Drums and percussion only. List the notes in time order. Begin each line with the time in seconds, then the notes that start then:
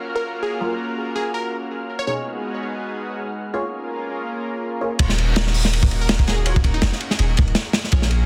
4.99 kick, crash, ride
5.09 snare
5.18 ride
5.36 snare, ride
5.47 snare
5.54 open hi-hat
5.65 snare
5.73 ride
5.83 kick
5.91 ride
6.09 snare, ride
6.19 kick
6.27 snare, ride
6.46 ride
6.56 kick
6.64 kick, ride
6.74 ride
6.82 snare, ride
6.92 snare
7.00 ride
7.11 snare
7.19 ride
7.37 kick, ride
7.48 ride
7.55 snare, ride
7.73 snare, ride
7.84 snare
7.92 kick, ride
8.02 snare
8.11 ride